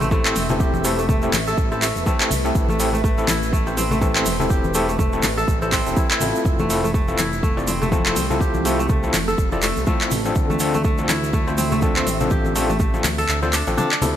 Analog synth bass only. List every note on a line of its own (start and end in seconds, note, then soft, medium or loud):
0.00 0.33 A1 loud
0.36 1.30 E1 medium
1.33 1.54 A1 loud
1.58 1.92 A1 loud
1.96 2.05 E1 medium
2.31 2.51 C2 medium
2.55 3.25 A1 loud
3.28 4.23 A1 loud
4.26 5.21 E1 medium
5.23 5.44 A1 medium
5.48 5.82 A1 loud
5.86 5.95 E1 medium
6.21 6.32 A1 loud
6.46 7.16 F1 loud
7.19 8.13 F1 loud
8.16 9.11 C2 medium
9.14 9.34 F1 medium
9.38 9.72 F1 loud
9.77 9.85 C2 medium
10.12 10.32 A1 loud
10.36 11.06 D2 loud
11.09 12.04 D2 loud
12.07 13.01 A1 medium
13.04 13.25 D2 loud
13.29 13.63 D2 loud
13.67 13.76 A1 medium
14.02 14.13 D2 loud